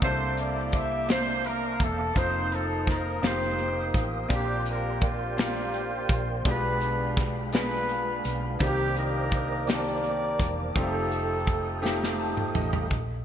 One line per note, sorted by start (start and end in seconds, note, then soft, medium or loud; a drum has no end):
0.00 1.77 C2 loud
0.00 1.06 C3 medium
0.00 2.13 A#3 medium
0.00 0.70 A#3 medium
0.00 0.70 C4 medium
0.00 0.71 D4 medium
0.00 2.14 E5 medium
0.00 2.14 A5 medium
0.00 2.14 D6 medium
0.00 kick loud
0.00 closed hi-hat medium
0.04 0.71 E4 medium
0.04 1.07 E4 medium
0.04 1.07 G4 medium
0.04 0.71 A4 medium
0.04 0.37 C5 loud
0.37 0.75 D5 loud
0.37 closed hi-hat medium
0.72 1.11 E5 loud
0.72 kick medium
0.72 closed hi-hat medium
1.08 1.77 A#3 medium
1.08 1.77 C4 medium
1.08 1.77 D4 medium
1.08 1.77 E4 medium
1.08 1.77 C5 medium
1.08 1.46 C5 loud
1.08 snare loud
1.08 closed hi-hat medium
1.44 1.81 A#4 medium
1.44 closed hi-hat medium
1.80 2.13 E1 medium
1.80 2.17 A4 medium
1.80 kick medium
1.80 closed hi-hat medium
2.15 3.19 F1 loud
2.15 2.84 A#3 medium
2.15 2.84 C4 medium
2.15 2.84 D#4 medium
2.15 3.20 D#4 medium
2.15 2.84 F4 medium
2.15 3.22 C5 medium
2.15 2.84 C5 medium
2.15 2.53 C5 loud
2.15 3.21 F5 medium
2.15 3.21 D#6 medium
2.15 kick medium
2.15 closed hi-hat medium
2.52 2.88 A4 medium
2.52 closed hi-hat medium
2.87 3.22 A#4 medium
2.87 kick medium
2.87 snare soft
2.87 closed hi-hat medium
3.21 3.91 F1 medium
3.21 3.91 A#3 medium
3.21 3.91 C4 medium
3.21 3.91 D#4 medium
3.21 3.91 F4 medium
3.21 3.91 G4 medium
3.21 6.42 A#4 medium
3.21 4.29 F5 medium
3.21 8.55 G5 medium
3.21 4.29 D#6 medium
3.21 snare loud
3.21 closed hi-hat medium
3.26 4.18 D#4 medium
3.26 4.18 G4 medium
3.26 4.05 C5 loud
3.59 closed hi-hat medium
3.94 4.28 A1 medium
3.94 kick medium
3.94 closed hi-hat medium
4.29 6.05 A#1 loud
4.29 5.33 A#2 medium
4.29 4.98 A#3 medium
4.29 4.98 C4 medium
4.29 4.98 D4 medium
4.29 4.98 F4 medium
4.29 4.98 G4 medium
4.29 6.43 D5 medium
4.29 6.43 C6 medium
4.29 kick medium
4.29 closed hi-hat medium
4.29 tambourine medium
4.35 5.36 C4 medium
4.35 5.36 D4 medium
4.35 4.66 G4 medium
4.66 closed hi-hat medium
4.66 tambourine medium
4.70 5.02 A#4 medium
5.01 6.43 F4 medium
5.01 6.43 G4 medium
5.01 kick medium
5.01 closed hi-hat medium
5.06 6.47 C5 loud
5.37 6.05 A#3 medium
5.37 6.06 C4 medium
5.37 6.06 D4 medium
5.37 6.06 F4 medium
5.37 6.06 G4 medium
5.37 snare loud
5.37 closed hi-hat medium
5.37 tambourine medium
5.74 closed hi-hat medium
6.09 6.43 A#1 medium
6.09 kick medium
6.09 closed hi-hat medium
6.09 tambourine soft
6.45 8.20 B1 medium
6.45 7.49 B2 medium
6.45 7.13 G#3 medium
6.45 8.58 G#3 medium
6.45 7.13 B3 medium
6.45 7.13 D4 medium
6.45 7.50 D4 medium
6.45 7.14 F4 medium
6.45 7.50 F4 medium
6.45 7.14 G4 medium
6.45 8.58 F5 medium
6.45 8.58 B5 medium
6.45 kick loud
6.45 closed hi-hat medium
6.45 tambourine soft
6.49 7.19 B4 medium
6.81 closed hi-hat medium
6.81 tambourine medium
7.17 kick medium
7.17 snare soft
7.17 closed hi-hat medium
7.52 8.20 G#3 medium
7.52 7.59 A#3 soft
7.52 8.21 D4 medium
7.52 8.57 D4 medium
7.52 8.21 F4 medium
7.52 8.57 F4 medium
7.52 8.21 G#4 medium
7.52 8.30 B4 loud
7.52 snare loud
7.52 closed hi-hat medium
7.52 tambourine medium
7.59 8.24 B3 medium
7.89 closed hi-hat medium
8.24 8.58 B1 medium
8.24 closed hi-hat medium
8.24 tambourine soft
8.59 10.35 C2 loud
8.59 9.64 C3 medium
8.59 9.28 D#3 medium
8.59 9.28 A#3 medium
8.59 9.65 A#3 medium
8.59 9.28 C4 medium
8.59 8.97 D#4 medium
8.59 8.67 F4 medium
8.59 8.94 G4 medium
8.59 10.74 A#4 medium
8.59 10.74 C5 medium
8.59 9.28 D5 medium
8.59 10.74 D5 medium
8.59 10.74 D6 medium
8.59 kick loud
8.59 closed hi-hat medium
8.59 tambourine medium
8.67 9.31 G4 medium
8.96 10.01 D4 medium
8.96 10.01 D#4 medium
8.96 9.69 A#4 loud
8.96 closed hi-hat medium
8.96 tambourine medium
9.32 kick medium
9.32 closed hi-hat medium
9.67 10.36 D#3 medium
9.67 10.35 A#3 medium
9.67 10.35 C4 medium
9.67 9.74 G4 medium
9.67 10.60 G4 medium
9.67 10.60 A#4 medium
9.67 10.36 D5 medium
9.67 10.60 D5 loud
9.67 snare loud
9.67 closed hi-hat medium
9.67 tambourine medium
9.74 10.39 A5 medium
10.04 closed hi-hat medium
10.39 10.72 E1 medium
10.39 kick medium
10.39 closed hi-hat medium
10.39 tambourine soft
10.73 12.51 F1 loud
10.73 10.82 G3 medium
10.73 11.44 C4 medium
10.73 12.16 C4 medium
10.73 11.44 D#4 medium
10.73 12.16 D#4 medium
10.73 11.44 F4 medium
10.73 11.44 G4 medium
10.73 12.88 A4 medium
10.73 12.88 F5 medium
10.73 12.88 G5 medium
10.73 12.87 D#6 medium
10.73 kick medium
10.73 closed hi-hat medium
10.73 tambourine soft
10.77 12.20 A4 medium
10.82 11.47 A3 medium
11.11 closed hi-hat medium
11.11 tambourine medium
11.47 kick medium
11.47 closed hi-hat medium
11.82 12.50 A3 medium
11.82 12.51 C4 medium
11.82 12.51 D#4 medium
11.82 12.51 F4 medium
11.82 12.51 G4 medium
11.82 snare medium
11.82 tambourine medium
12.04 snare medium
12.19 12.36 A5 medium
12.37 12.53 G5 medium
12.37 mid tom medium
12.55 12.88 A1 medium
12.55 12.88 D#5 medium
12.55 floor tom medium
12.55 tambourine medium
12.73 floor tom medium
12.91 13.25 A#1 medium
12.91 kick medium
12.91 closed hi-hat medium